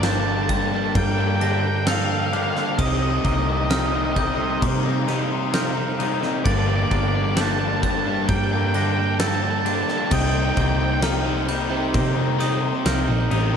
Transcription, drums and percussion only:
0.03 snare, crash
0.49 kick, crash
0.95 kick, crash
1.41 crash
1.87 snare, crash
2.33 crash
2.56 snare
2.79 kick, crash
3.25 kick, crash
3.71 snare, crash
4.16 kick, crash
4.62 kick, crash
5.08 snare, crash
5.54 snare, crash
6.00 crash
6.23 snare
6.45 kick, crash
6.91 kick, crash
7.37 snare, crash
7.83 kick, crash
8.29 kick, crash
8.74 crash
9.20 snare, crash
9.66 crash
9.88 snare
10.11 kick, crash
10.57 kick, crash
11.02 snare, crash
11.48 crash
11.94 kick, crash
12.40 snare, crash
12.86 snare, crash
13.31 crash

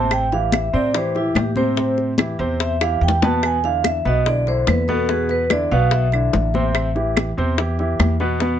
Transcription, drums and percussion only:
0.11 high bongo, high conga, claves
0.32 high bongo, high conga
0.52 high bongo, high conga, claves
0.74 high conga
0.94 high bongo, high conga
1.15 high bongo, high conga
1.35 high bongo, low bongo, high conga, claves
1.56 high bongo, high conga
1.76 high bongo, high conga
1.98 high bongo, high conga
2.18 high bongo, high conga, claves
2.60 high bongo, high conga
2.81 high bongo, high conga, claves
3.02 high conga
3.08 low bongo
3.22 low bongo, high conga
3.43 high bongo, high conga, claves
3.64 high bongo, high conga
3.84 high bongo, high conga, claves
4.05 high conga
4.26 high bongo, high conga
4.47 high bongo, high conga
4.67 high bongo, low bongo, high conga, claves
4.88 high bongo, high conga
5.09 high bongo, high conga
5.29 high bongo, high conga
5.50 high bongo, high conga, claves
5.91 high bongo, high conga
6.12 high bongo, high conga, claves
6.33 high bongo, low bongo, high conga
6.54 high bongo, high conga
6.75 high bongo, claves
6.96 high bongo, high conga
7.17 high bongo, high conga, claves
7.38 high conga
7.58 high bongo, high conga
7.79 high bongo, high conga
8.00 high bongo, low bongo, high conga, claves
8.20 high bongo
8.40 high bongo, high conga

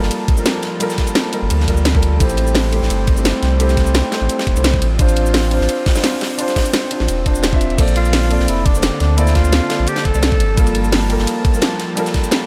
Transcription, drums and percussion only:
0.02 snare
0.11 closed hi-hat, ride, cabasa
0.28 kick, closed hi-hat, ride
0.37 cabasa
0.46 snare, closed hi-hat, ride, cabasa
0.62 snare, closed hi-hat, ride
0.80 closed hi-hat, ride, cabasa
0.90 snare, closed hi-hat, cabasa
0.98 kick, snare, closed hi-hat, ride
1.07 closed hi-hat, cabasa
1.15 snare, closed hi-hat, ride
1.33 closed hi-hat, ride
1.50 closed hi-hat, ride, cabasa
1.60 snare
1.68 kick, closed hi-hat, ride
1.77 cabasa
1.85 snare, closed hi-hat, ride, cabasa
1.95 kick
2.02 closed hi-hat, ride, cabasa
2.20 kick, closed hi-hat, ride, cabasa
2.30 closed hi-hat, cabasa
2.37 closed hi-hat, ride
2.47 cabasa
2.55 snare, closed hi-hat, open hi-hat
2.64 ride
2.72 closed hi-hat, ride
2.82 snare
2.90 closed hi-hat, ride, cabasa
3.07 kick, closed hi-hat, ride
3.17 cabasa
3.25 snare, closed hi-hat, ride, cabasa
3.43 snare, closed hi-hat, ride
3.60 closed hi-hat, ride, cabasa
3.69 snare, closed hi-hat, cabasa
3.77 kick, snare, closed hi-hat, ride
3.87 cabasa
3.94 snare, closed hi-hat, ride
4.12 snare, closed hi-hat, ride
4.29 closed hi-hat, ride, cabasa
4.39 snare, ride
4.47 kick, closed hi-hat
4.56 ride, cabasa
4.64 snare, closed hi-hat, ride, cabasa
4.74 kick
4.82 closed hi-hat, ride
4.99 kick, closed hi-hat, ride, cabasa
5.09 closed hi-hat, cabasa
5.16 closed hi-hat, ride
5.26 cabasa
5.34 snare, closed hi-hat, open hi-hat
5.45 ride
5.51 closed hi-hat, ride
5.61 snare
5.69 closed hi-hat, ride, cabasa
5.86 kick, snare, closed hi-hat, open hi-hat
5.95 snare, open hi-hat, cabasa
6.03 snare, closed hi-hat, open hi-hat, cabasa
6.21 snare, closed hi-hat, open hi-hat
6.30 ride
6.39 closed hi-hat, ride, cabasa
6.48 snare, closed hi-hat, cabasa
6.56 kick, snare, closed hi-hat, open hi-hat, cabasa
6.65 closed hi-hat, cabasa
6.74 snare, closed hi-hat, ride
6.91 closed hi-hat, ride
7.00 snare
7.08 closed hi-hat, ride, cabasa
7.26 kick, closed hi-hat, ride
7.35 cabasa
7.43 snare, closed hi-hat, ride, cabasa
7.53 kick
7.61 closed hi-hat, ride, cabasa
7.70 closed hi-hat
7.78 kick, closed hi-hat, crash, ride, cabasa
7.88 closed hi-hat, cabasa
7.96 closed hi-hat, ride
8.05 cabasa
8.13 snare, closed hi-hat, open hi-hat
8.23 ride
8.31 closed hi-hat, ride
8.40 snare
8.48 closed hi-hat, ride, cabasa
8.66 kick, closed hi-hat, ride
8.75 cabasa
8.82 snare, closed hi-hat, ride, cabasa
9.00 snare, closed hi-hat, ride
9.18 closed hi-hat, ride, cabasa
9.27 snare, closed hi-hat, cabasa
9.35 kick, snare, closed hi-hat, ride
9.44 cabasa
9.52 snare, closed hi-hat, ride
9.70 snare, closed hi-hat, ride
9.87 closed hi-hat, ride, cabasa
9.96 snare, ride
10.05 kick, closed hi-hat
10.14 ride, cabasa
10.22 snare, closed hi-hat, ride, cabasa
10.32 kick
10.40 closed hi-hat, ride
10.57 kick, closed hi-hat, ride, cabasa
10.67 closed hi-hat, cabasa
10.75 closed hi-hat, ride
10.84 cabasa
10.92 snare, closed hi-hat, open hi-hat
11.01 ride
11.10 closed hi-hat, ride
11.19 snare
11.27 closed hi-hat, ride, cabasa
11.45 kick, closed hi-hat, ride
11.54 cabasa
11.62 snare, closed hi-hat, ride, cabasa
11.79 snare, closed hi-hat, ride
11.97 closed hi-hat, ride, cabasa
12.06 snare, closed hi-hat, cabasa
12.14 kick, snare, closed hi-hat, ride
12.24 closed hi-hat, cabasa
12.31 snare, closed hi-hat, ride

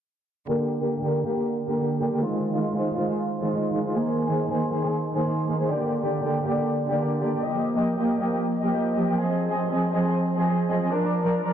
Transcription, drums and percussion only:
0.70 open hi-hat
1.13 open hi-hat
1.57 open hi-hat
2.00 open hi-hat
2.44 open hi-hat
2.87 open hi-hat
3.31 open hi-hat
3.74 open hi-hat
3.85 open hi-hat
4.18 open hi-hat
4.61 open hi-hat
5.05 open hi-hat
5.48 open hi-hat
5.91 open hi-hat
6.35 open hi-hat
6.78 open hi-hat
7.22 open hi-hat
7.33 open hi-hat
7.65 open hi-hat
8.09 open hi-hat
8.52 open hi-hat
8.96 open hi-hat
9.39 open hi-hat
9.83 open hi-hat
10.26 open hi-hat
10.70 open hi-hat
10.81 open hi-hat
11.13 open hi-hat

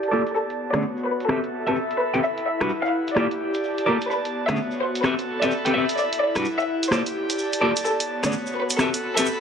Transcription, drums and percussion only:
0.03 closed hi-hat, shaker
0.27 closed hi-hat, shaker
0.36 shaker
0.50 closed hi-hat, shaker
0.74 cross-stick, closed hi-hat, shaker
0.82 shaker
0.97 shaker
1.20 closed hi-hat, shaker
1.29 cross-stick, shaker
1.43 closed hi-hat, shaker
1.67 closed hi-hat, shaker
1.75 shaker
1.90 closed hi-hat, shaker
2.14 closed hi-hat, shaker
2.23 shaker
2.37 closed hi-hat, shaker
2.61 cross-stick, closed hi-hat, shaker
2.69 shaker
2.85 shaker
3.08 closed hi-hat, shaker
3.16 cross-stick, shaker
3.31 closed hi-hat, shaker
3.54 closed hi-hat, shaker
3.64 shaker
3.78 closed hi-hat, shaker
4.01 closed hi-hat, shaker
4.11 shaker
4.25 closed hi-hat, shaker
4.49 cross-stick, closed hi-hat, shaker
4.56 shaker
4.71 shaker
4.95 closed hi-hat, shaker
5.04 cross-stick, shaker
5.19 closed hi-hat, shaker
5.42 closed hi-hat, shaker
5.51 shaker
5.65 closed hi-hat, shaker
5.89 closed hi-hat, shaker
5.98 shaker
6.13 closed hi-hat, shaker
6.36 cross-stick, closed hi-hat, shaker
6.45 shaker
6.59 shaker
6.83 closed hi-hat, shaker
6.92 cross-stick, shaker
7.06 closed hi-hat, shaker
7.30 closed hi-hat, shaker
7.38 shaker
7.53 closed hi-hat, shaker
7.76 closed hi-hat, shaker
7.85 shaker
8.00 closed hi-hat, shaker
8.24 cross-stick, closed hi-hat, shaker
8.32 shaker
8.46 shaker
8.70 closed hi-hat, shaker
8.79 cross-stick, shaker
8.94 closed hi-hat, shaker
9.17 closed hi-hat, shaker
9.26 shaker

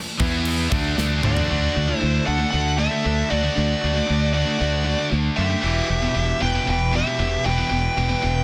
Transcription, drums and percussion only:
0.19 kick, crash
0.45 crash
0.72 kick, crash
0.98 snare
1.23 mid tom
1.37 floor tom

